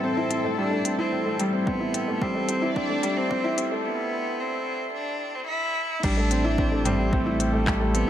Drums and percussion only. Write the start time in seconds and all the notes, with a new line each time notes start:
0.31 closed hi-hat, mid tom
0.85 closed hi-hat
1.40 closed hi-hat
1.67 kick
1.94 closed hi-hat
2.22 kick
2.49 closed hi-hat, mid tom
2.76 kick
3.03 closed hi-hat
3.31 kick
3.58 closed hi-hat
6.03 kick, crash
6.31 closed hi-hat
6.58 kick
6.85 closed hi-hat, mid tom
7.13 kick
7.40 closed hi-hat
7.67 kick, clap
7.95 closed hi-hat